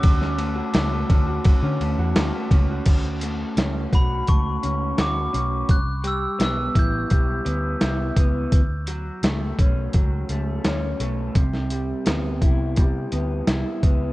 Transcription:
<<
  \new Staff \with { instrumentName = "Glockenspiel" } { \time 4/4 \key d \major \tempo 4 = 85 d'''2. r4 | r4. b''8 cis'''4 d'''4 | fis'''8 e'''8 e'''8 g'''4. r4 | r1 |
r1 | }
  \new Staff \with { instrumentName = "Clean electric guitar" } { \time 4/4 \key d \major r16 cis'16 a16 fis'16 cis'16 a16 cis'16 fis'8 cis'16 a16 fis'16 cis'16 a16 cis'16 fis'16 | r8 a8 cis'8 fis'8 a8 cis'8 fis'8 cis'8 | r8 g8 b8 e'8 g8 b8 e'8 b8 | r8 fis8 a8 cis'8 fis8 a8 cis'8 a8 |
c8 g8 b8 e'8 g8 b8 e'8 b8 | }
  \new Staff \with { instrumentName = "Fingered electric bass" } { \clef bass \time 4/4 \key d \major d,4 cis,8 d,8 r16 d16 d,16 e,16 d,16 r16 cis,8 | d,4 cis,8 b,,8 cis,8 cis,8 d,8 b,,8 | c,4 b,,8 a,,8 b,,8 d,8 c,8 cis,8 | d,4 cis,8 b,,8 cis,8 cis,8 d,8 b,,8 |
c,4 d,8 c,8 c8 d,8 c,16 r16 cis,8 | }
  \new DrumStaff \with { instrumentName = "Drums" } \drummode { \time 4/4 <bd cymr>16 sn16 cymr8 <cymr sn>8 <bd cymr>8 <bd cymr>8 cymr8 <cymr sn>8 <bd cymr>8 | <cymc hh bd>8 hh8 <hh sn>8 <hh bd>8 <hh bd>8 hh8 <hh sn>8 hh8 | <hh bd>8 hh8 <hh sn>8 <hh bd>8 <hh bd>8 hh8 <hh sn>8 <hh bd>8 | <hh bd>8 hh8 <hh sn>8 <hh bd>8 <hh bd>8 hh8 <hh sn>8 hh8 |
<hh bd>16 sn16 hh8 <hh sn>8 <hh bd>8 <hh bd>8 hh8 <hh sn>8 <hh bd>8 | }
>>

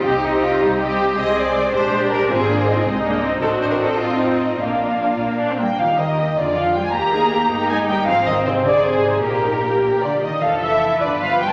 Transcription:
<<
  \new Staff \with { instrumentName = "Violin section" } { \time 6/8 \key c \minor \tempo 4. = 104 ees''8 ees''4. ees''4 | \key ees \major c''2. | c''4. ees''4. | ees''2. |
f''2~ f''8 g''8 | f''8 ees''4 d''8 f''8 g''16 aes''16 | bes''2 aes''8 g''8 | f''8 ees''8 c''8 d''8 c''4 |
bes'2 d''8 ees''8 | \key d \dorian f''8 e''4 d''8 f''8 g''16 r16 | }
  \new Staff \with { instrumentName = "Violin section" } { \time 6/8 \key c \minor << { g'8 ees'8 f'8 ees'8 g'4 | \key ees \major ees''8 d''4 c''4 bes'8 | aes'4. r4. | a'8 c''16 bes'16 a'8 f'8 ees'4 |
d'2~ d'8 r8 | g'8 bes'8 g'8 aes'8 f'8 aes'8 | g'8 bes'8 g'8 bes'8 g'8 bes'8 | aes'8 c''8 aes'8 c''8 aes'8 c''8 |
g'8 bes'8 g'8 g'8 f'8 ees'8 | \key d \dorian a'4. b'4. | } \\ { r2. | r2. | r2. | r2. |
r2. | ees'8 bes8 ees'8 f'8 d'8 f'8 | bes8 ees'8 bes8 g'8 ees'8 g'8 | c'8 ees'8 c'8 ees'8 c'8 ees'8 |
bes8 ees'8 bes8 r4. | d'8. e'8. f'4. | } >> }
  \new Staff \with { instrumentName = "Viola section" } { \time 6/8 \key c \minor << { g'8 g'4. g'4 | \key ees \major aes'4. g'4. | f'4. ees'4. | fis'4. f'4. |
f'4. bes8 d'16 c'16 bes8 | r4. f'4. | g'8 aes'8 g'8 ees'4. | c'4. aes'4. |
g'2~ g'16 r8. | \key d \dorian a'4. b'4. | } \\ { c'8 c'4. c'4 | c'4. d'4. | c'8 bes8 c'8 aes8 bes8 c'8 | c'2. |
bes4. r4. | r2. | r2. | r2. |
r2. | r2. | } >> }
  \new Staff \with { instrumentName = "Cello section" } { \clef bass \time 6/8 \key c \minor ees'4. g4. | \key ees \major aes2. | c'8 d'8 ees'8 c'8 d'8 ees'8 | d'4. c'4. |
bes2~ bes16 r16 g8 | f8 ees4 d8 f8 g16 aes16 | bes2 aes8 g8 | f8 ees8 c8 d8 c4 |
bes,2 d8 ees8 | \key d \dorian f8 e4 d8 f8 g16 r16 | }
  \new Staff \with { instrumentName = "Double bass section" } { \clef bass \time 6/8 \key c \minor c,4. c,4. | \key ees \major c,4. bes,,4. | aes,,4. c,4. | a,,4. a,4. |
bes,,4. bes,4. | ees,4. f,4. | ees,4. g,,4. | aes,,2. |
bes,,2~ bes,,8 r8 | \key d \dorian f,,4. g,,4. | }
>>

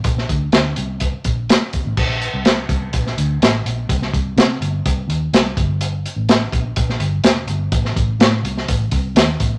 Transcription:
<<
  \new Staff \with { instrumentName = "Fingered electric bass" } { \clef bass \time 4/4 \key bes \major \tempo 4 = 125 bes,,8 d,8 d,8 c,4 bes,,8. r16 f,,16 a,,16 | bes,,8. c,8. c,8 bes,,8 d,8 a,,8 bes,,8 | c,8 c,8 c8 g,,8 c,8 ees,8 c,8 g,,8~ | g,,8. a,,8. bes,,8 bes,,8 g,,8 f,,8 g,,8 |
a,,8 a,,8 a,8 c,8 a,,8 c,8 ees,8 a,,8 | }
  \new DrumStaff \with { instrumentName = "Drums" } \drummode { \time 4/4 <hh bd>16 sn16 <hh bd>8 <hh sn>8 hh8 <hh bd>8 <hh bd>8 <hh sn>8 <hh bd>8 | <cymc bd>8 hh8 <hh sn>8 <hh bd>8 <hh bd>16 sn16 hh8 <hh sn>8 hh8 | <hh bd>16 sn16 <hh bd>8 <hh sn>8 hh8 <hh bd>8 hh8 <hh sn>8 <hh bd>8 | hh8 hh8 <hh sn>8 <hh bd>8 <hh bd>16 sn16 hh8 <hh sn>8 hh8 |
<hh bd>16 sn16 <hh bd>8 <hh sn>8 hh16 sn16 <hh bd>8 <hh bd>8 <hh sn>8 <hh bd>8 | }
>>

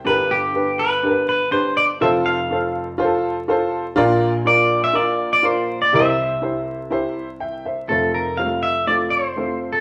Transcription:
<<
  \new Staff \with { instrumentName = "Clean electric guitar" } { \time 4/4 \key f \major \tempo 4 = 123 b'8 g'4 b'4 b'8 c''8 d''8 | e''8 f''4 r2 r8 | r4 d''8. e''16 d''8. d''16 c''8. d''16 | e''2 r2 |
a'8 bes'8 f''8 e''8 d''8 c''4~ c''16 a'16 | }
  \new Staff \with { instrumentName = "Upright piano" } { \time 4/4 \key f \major << { r1 | r1 | r1 | r2. <e'' g''>8 <c'' e''>8~ |
<c'' e''>8 r2. r8 | } \\ { <d' g' bes' b'>8 r8 <d' g' b'>8 r8 <d' g' bes' b'>8 r8 <d' g' b'>8 r8 | <f' a' c''>8 r8 <f' a' c''>8 r8 <f' g' a' c''>8 r8 <f' a' c''>8 r8 | <f' bes' d''>8 r8 <f' bes' d''>8 r8 <f' bes' d''>8 r8 <f' bes' d''>8 r8 | <e' g' bes' c''>8 r8 <e' g' c''>8 r8 <e' g' c''>8 r4. |
<a c' f' c''>8 r8 <g a c' f' c''>8 r8 <a c' f' d''>8 r8 <a c' f' c''>8 r8 | } >> }
  \new Staff \with { instrumentName = "Upright piano" } { \clef bass \time 4/4 \key f \major <g,, g,>1 | <f,, f,>1 | <bes,, bes,>1 | <c, c>1 |
<f,, f,>1 | }
>>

